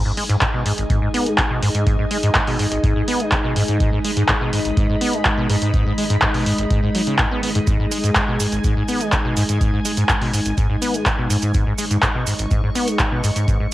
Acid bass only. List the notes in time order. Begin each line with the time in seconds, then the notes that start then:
0.05 G#2
0.17 G#3
0.29 G#2
0.41 G#2
0.54 B2
0.66 G#2
0.78 G#1
0.90 G#2
1.02 G#2
1.14 B3
1.26 G#3
1.38 G#2
1.50 B2
1.62 G#2
1.75 G#2
1.87 G#2
1.99 G#2
2.11 G#3
2.23 G#2
2.35 G#2
2.47 B2
2.59 G#2
2.72 G#1
2.84 G#2
2.96 G#2
3.08 B3
3.20 G#3
3.32 G#2
3.44 B2
3.56 G#2
3.68 G#2
3.93 G#2
4.05 G#3
4.17 G#2
4.29 G#2
4.41 B2
4.53 G#2
4.65 G#1
4.77 G#2
4.89 G#2
5.01 B3
5.13 G#3
5.25 G#2
5.38 B2
5.50 G#2
5.62 G#2
5.74 G#2
5.86 G#2
5.98 G#3
6.10 G#2
6.22 G#2
6.34 B2
6.46 G#2
6.58 G#1
6.71 G#2
6.83 G#2
6.95 F#3
7.07 C#3
7.19 G#2
7.31 B3
7.43 B3
7.55 G#2
7.67 G#2
7.80 G#2
7.92 G#3
8.04 G#2
8.16 G#2
8.28 B2
8.40 G#2
8.52 G#1
8.64 G#2
8.76 G#2
8.88 B3
9.01 G#3
9.13 G#2
9.25 B2
9.37 G#2
9.49 G#2
9.61 G#2
9.73 G#2
9.85 G#3
9.97 G#2
10.09 G#2
10.21 B2
10.33 G#2
10.46 G#1
10.58 G#2
10.70 G#2
10.82 B3
10.94 G#3
11.06 G#2
11.18 B2
11.30 G#2
11.43 G#2
11.54 G#2
11.67 G#2
11.79 G#3
11.91 G#2
12.03 G#2
12.15 B2
12.27 G#2
12.39 G#1
12.51 G#2
12.63 G#2
12.75 B3
12.88 G#3
13.00 G#2
13.12 B2
13.24 G#2
13.36 G#2
13.48 G#2
13.60 G#2